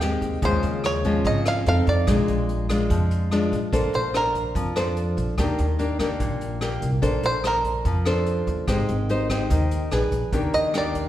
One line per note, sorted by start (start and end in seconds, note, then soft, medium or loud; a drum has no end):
0.00 0.17 D#2 medium
0.00 0.41 D#3 medium
0.00 0.39 G#3 medium
0.00 0.40 C4 medium
0.00 0.40 G4 medium
0.00 0.45 G5 medium
0.00 cross-stick medium
0.00 closed hi-hat soft
0.21 0.41 D#2 medium
0.21 kick soft
0.21 closed hi-hat soft
0.42 0.62 D#2 loud
0.42 1.23 C#3 medium
0.42 1.01 F3 soft
0.42 1.01 G#3 medium
0.42 1.01 C#4 medium
0.42 1.02 F4 medium
0.42 0.82 C5 medium
0.42 kick medium
0.42 closed hi-hat medium
0.63 1.21 D#2 medium
0.63 closed hi-hat soft
0.84 1.27 C#5 medium
0.84 cross-stick medium
0.84 closed hi-hat soft
1.04 1.63 F3 medium
1.04 1.63 G#3 medium
1.04 1.64 C#4 medium
1.04 1.64 F4 medium
1.04 kick soft
1.04 closed hi-hat soft
1.25 1.63 G#1 medium
1.25 1.65 C#3 medium
1.25 1.47 D#5 medium
1.25 kick medium
1.25 closed hi-hat medium
1.45 1.67 F5 medium
1.45 cross-stick medium
1.45 closed hi-hat soft
1.66 1.85 F2 medium
1.66 2.04 C4 medium
1.66 2.05 D#4 medium
1.66 2.05 A4 medium
1.66 1.89 F5 loud
1.66 closed hi-hat soft
1.87 2.06 F2 medium
1.87 3.28 D5 medium
1.87 kick soft
1.87 closed hi-hat soft
2.07 2.27 A#1 medium
2.07 2.88 A#2 medium
2.07 2.66 G#3 medium
2.07 2.66 D4 medium
2.07 2.67 F4 medium
2.07 kick medium
2.07 cross-stick medium
2.07 closed hi-hat medium
2.28 2.86 A#1 medium
2.28 closed hi-hat soft
2.49 closed hi-hat soft
2.69 3.28 G#3 medium
2.69 3.28 D4 medium
2.69 3.28 F4 medium
2.69 kick soft
2.69 cross-stick medium
2.69 closed hi-hat soft
2.90 3.48 F2 medium
2.90 3.71 F3 medium
2.90 kick medium
2.90 closed hi-hat medium
3.11 closed hi-hat soft
3.31 3.58 G#3 medium
3.31 3.59 D4 medium
3.31 3.59 F4 medium
3.31 cross-stick medium
3.31 closed hi-hat soft
3.52 3.71 A#1 medium
3.52 kick soft
3.52 closed hi-hat soft
3.73 3.92 A#1 medium
3.73 4.53 A#3 soft
3.73 3.99 D4 soft
3.73 3.99 A4 medium
3.73 4.00 C5 medium
3.73 kick medium
3.73 closed hi-hat medium
3.93 4.51 A#1 medium
3.93 4.14 C5 medium
3.93 closed hi-hat soft
4.14 4.73 D4 soft
4.14 4.73 A#4 medium
4.14 4.73 C5 medium
4.14 cross-stick medium
4.14 closed hi-hat soft
4.35 kick soft
4.35 closed hi-hat soft
4.55 5.13 F2 medium
4.55 5.36 F3 medium
4.55 kick soft
4.55 closed hi-hat medium
4.76 5.34 D4 medium
4.76 5.35 A4 medium
4.76 5.35 C5 medium
4.76 cross-stick medium
4.76 closed hi-hat soft
4.96 closed hi-hat soft
5.17 5.36 A#1 medium
5.17 kick soft
5.17 closed hi-hat soft
5.38 5.57 D#2 medium
5.38 6.19 D#3 medium
5.38 5.65 A#3 soft
5.38 5.65 D4 medium
5.38 5.65 G4 medium
5.38 kick medium
5.38 cross-stick medium
5.38 closed hi-hat medium
5.58 6.17 D#2 medium
5.58 closed hi-hat soft
5.79 5.96 A#3 medium
5.79 5.97 D4 medium
5.79 5.97 G4 medium
5.79 closed hi-hat soft
5.99 6.58 A#3 medium
5.99 6.59 D4 medium
5.99 6.59 G4 medium
5.99 kick soft
5.99 cross-stick medium
5.99 closed hi-hat soft
6.20 6.78 A#1 medium
6.20 7.01 A#2 medium
6.20 kick medium
6.20 closed hi-hat medium
6.41 closed hi-hat soft
6.61 6.89 A#3 medium
6.61 6.89 D4 soft
6.61 6.89 G4 medium
6.61 cross-stick medium
6.61 closed hi-hat soft
6.82 7.01 C2 medium
6.82 kick soft
6.82 closed hi-hat soft
7.02 7.22 A#1 medium
7.02 7.83 A#3 medium
7.02 7.29 D4 medium
7.02 7.29 A4 medium
7.02 7.29 C5 medium
7.02 kick medium
7.02 closed hi-hat medium
7.23 7.81 A#1 medium
7.23 7.45 C5 medium
7.23 closed hi-hat soft
7.44 7.85 D4 medium
7.44 8.03 A#4 medium
7.44 7.86 C5 medium
7.44 cross-stick medium
7.44 closed hi-hat soft
7.64 kick soft
7.64 closed hi-hat soft
7.85 8.43 F2 medium
7.85 8.66 F3 medium
7.85 kick medium
7.85 closed hi-hat soft
8.05 8.65 D4 medium
8.05 8.65 A4 medium
8.05 8.65 C5 medium
8.05 cross-stick medium
8.05 closed hi-hat soft
8.26 closed hi-hat soft
8.47 8.66 D#2 medium
8.47 kick soft
8.47 closed hi-hat soft
8.68 8.87 G#1 medium
8.68 9.49 G#3 medium
8.68 8.95 D#4 medium
8.68 8.95 G4 medium
8.68 8.95 C5 medium
8.68 kick medium
8.68 cross-stick medium
8.68 closed hi-hat medium
8.88 9.47 G#1 medium
8.88 closed hi-hat soft
9.09 9.27 D#4 medium
9.09 9.27 G4 medium
9.09 9.27 C5 medium
9.09 closed hi-hat soft
9.30 9.89 D#4 medium
9.30 9.89 G4 medium
9.30 9.89 C5 medium
9.30 kick soft
9.30 cross-stick medium
9.30 closed hi-hat soft
9.50 9.89 D#2 medium
9.50 9.90 D#3 medium
9.50 kick medium
9.50 closed hi-hat medium
9.71 closed hi-hat soft
9.91 10.11 A#1 medium
9.91 10.31 D4 medium
9.91 10.31 G#4 medium
9.91 10.32 B4 medium
9.91 cross-stick medium
9.91 closed hi-hat soft
10.12 10.31 A#1 medium
10.12 kick soft
10.12 closed hi-hat soft
10.32 10.52 D#2 medium
10.32 11.09 D#3 medium
10.32 10.71 A#3 medium
10.32 10.71 D4 medium
10.32 10.71 G4 medium
10.32 kick medium
10.32 closed hi-hat medium
10.53 11.09 D#2 medium
10.53 10.74 D#5 medium
10.53 closed hi-hat soft
10.74 11.09 A#3 medium
10.74 11.09 D4 medium
10.74 11.09 G4 medium
10.74 11.09 D5 medium
10.74 cross-stick medium
10.74 closed hi-hat soft
10.94 kick soft
10.94 closed hi-hat soft